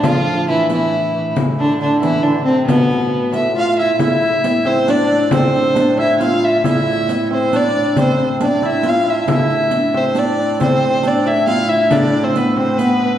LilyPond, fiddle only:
\new Staff \with { instrumentName = "Fiddle" } { \time 6/8 \key a \minor \tempo 4. = 91 f'4 e'8 e'4. | r8 d'8 d'8 e'8 d'8 c'8 | b4. e''8 f''8 e''8 | e''4. c''8 d''4 |
c''4. e''8 f''8 e''8 | e''4. c''8 d''4 | c''4 d''8 e''8 f''8 e''8 | e''4. c''8 d''4 |
c''4 d''8 e''8 f''8 e''8 | d''8. c''16 b'8 c''8 b'4 | }